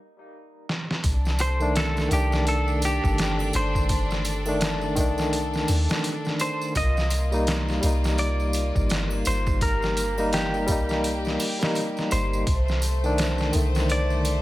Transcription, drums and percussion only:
0.69 snare
0.91 snare
1.04 kick, closed hi-hat, tambourine
1.25 snare, tambourine
1.39 closed hi-hat, tambourine
1.60 tambourine
1.76 snare, closed hi-hat, tambourine
1.97 snare, tambourine
2.11 closed hi-hat, tambourine
2.32 snare, tambourine
2.47 closed hi-hat, tambourine
2.68 tambourine
2.82 closed hi-hat, tambourine
3.04 kick, tambourine
3.18 snare, closed hi-hat, tambourine
3.39 tambourine, triangle
3.53 closed hi-hat, tambourine
3.75 kick, tambourine
3.89 kick, closed hi-hat, tambourine
4.11 snare, tambourine
4.25 closed hi-hat, tambourine
4.46 tambourine, triangle
4.61 snare, closed hi-hat, tambourine
4.81 tambourine
4.96 kick, closed hi-hat, tambourine
5.18 snare, tambourine
5.33 closed hi-hat, tambourine
5.53 snare, tambourine
5.68 open hi-hat, tambourine, triangle
5.89 snare, tambourine
6.04 closed hi-hat, tambourine
6.25 snare, tambourine
6.39 closed hi-hat, tambourine
6.61 tambourine
6.75 kick, closed hi-hat, tambourine
6.97 snare, tambourine
7.10 closed hi-hat, tambourine
7.32 tambourine
7.47 snare, closed hi-hat, tambourine
7.68 snare, tambourine
7.83 closed hi-hat, tambourine
8.04 snare, tambourine
8.18 closed hi-hat, tambourine
8.40 tambourine
8.53 closed hi-hat, tambourine
8.75 kick, tambourine
8.89 snare, closed hi-hat, tambourine
9.11 tambourine, triangle
9.25 closed hi-hat, tambourine
9.47 kick, tambourine
9.61 kick, closed hi-hat, tambourine
9.82 snare, tambourine
9.97 closed hi-hat, tambourine
10.18 tambourine, triangle
10.33 snare, closed hi-hat, tambourine
10.54 tambourine
10.68 kick, closed hi-hat, tambourine
10.89 snare, tambourine
11.04 closed hi-hat, tambourine
11.25 snare, tambourine
11.40 open hi-hat, tambourine, triangle
11.61 snare, tambourine
11.75 closed hi-hat, tambourine
11.97 snare, tambourine
12.11 closed hi-hat, tambourine
12.33 tambourine
12.47 kick, closed hi-hat, tambourine
12.68 snare, tambourine
12.82 closed hi-hat, tambourine
13.04 tambourine
13.18 snare, closed hi-hat, tambourine
13.38 snare, tambourine
13.53 closed hi-hat, tambourine
13.75 snare, tambourine
13.89 closed hi-hat, tambourine
14.10 tambourine
14.25 closed hi-hat, tambourine

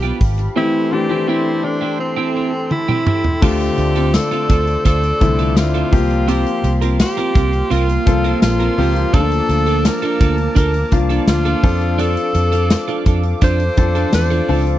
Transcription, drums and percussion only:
0.03 closed hi-hat
0.21 kick, open hi-hat
0.39 closed hi-hat
2.71 high tom
2.89 mid tom
3.07 mid tom
3.24 floor tom
3.42 kick, crash
3.60 closed hi-hat
3.78 closed hi-hat
3.96 closed hi-hat
4.14 snare, closed hi-hat, tambourine
4.32 closed hi-hat
4.50 kick, closed hi-hat
4.67 closed hi-hat
4.85 kick, closed hi-hat
5.04 closed hi-hat
5.21 kick, closed hi-hat
5.39 closed hi-hat
5.57 snare, closed hi-hat, tambourine
5.75 closed hi-hat
5.93 kick, open hi-hat
6.11 closed hi-hat
6.28 closed hi-hat
6.47 closed hi-hat
6.64 closed hi-hat
6.82 closed hi-hat
6.99 snare, closed hi-hat, tambourine
7.18 closed hi-hat
7.35 kick, closed hi-hat
7.53 closed hi-hat
7.71 closed hi-hat
7.89 closed hi-hat
8.07 kick, closed hi-hat
8.25 closed hi-hat
8.42 snare, closed hi-hat, tambourine
8.60 closed hi-hat
8.78 open hi-hat
8.96 closed hi-hat
9.14 kick, closed hi-hat
9.32 closed hi-hat
9.49 closed hi-hat
9.67 closed hi-hat
9.85 snare, closed hi-hat, tambourine
10.03 closed hi-hat
10.21 kick, closed hi-hat
10.38 closed hi-hat
10.56 kick, closed hi-hat
10.74 closed hi-hat
10.92 kick, closed hi-hat
11.10 closed hi-hat
11.28 snare, closed hi-hat, tambourine
11.46 closed hi-hat
11.63 kick, open hi-hat
11.82 closed hi-hat
11.99 closed hi-hat
12.17 closed hi-hat
12.35 closed hi-hat
12.53 closed hi-hat
12.70 snare, closed hi-hat, tambourine
12.88 closed hi-hat
13.06 kick, closed hi-hat
13.23 closed hi-hat
13.41 kick, closed hi-hat
13.60 closed hi-hat
13.77 kick, closed hi-hat
13.95 closed hi-hat
14.13 snare, closed hi-hat, tambourine
14.31 closed hi-hat
14.49 open hi-hat
14.67 closed hi-hat

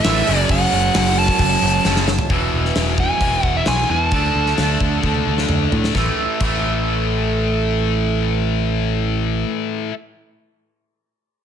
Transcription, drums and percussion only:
0.04 snare, open hi-hat
0.27 open hi-hat
0.49 kick, open hi-hat
0.72 open hi-hat
0.94 snare, open hi-hat
1.06 snare
1.17 open hi-hat
1.28 kick
1.39 kick, open hi-hat
1.62 open hi-hat
1.85 snare
1.96 snare
2.08 snare
2.19 floor tom
2.30 kick, open hi-hat
2.65 snare
2.75 snare, open hi-hat
2.98 kick
3.21 kick, open hi-hat
3.43 kick
3.66 snare, open hi-hat
4.11 kick, open hi-hat
4.46 snare
4.57 snare, open hi-hat
4.80 kick
5.03 kick
5.15 high tom
5.38 snare
5.49 mid tom
5.72 floor tom
5.84 snare
5.95 kick, snare
6.40 kick, crash

